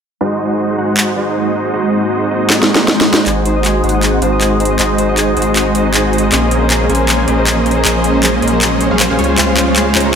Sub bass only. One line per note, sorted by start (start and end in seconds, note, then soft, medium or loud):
3.26 3.82 G#1 loud
3.84 4.20 G#1 medium
4.22 4.78 G#1 medium
4.79 5.35 G#1 loud
5.37 6.30 G#1 medium
6.32 6.88 A#1 loud
6.89 7.26 A#1 medium
7.28 7.83 A#1 loud
7.85 8.41 A#1 loud
8.42 8.89 A#1 medium
8.91 9.08 A#1 medium
9.10 9.17 A#1 loud
9.19 9.36 C#2 loud
9.38 9.93 C#2 loud
9.95 10.15 C#2 loud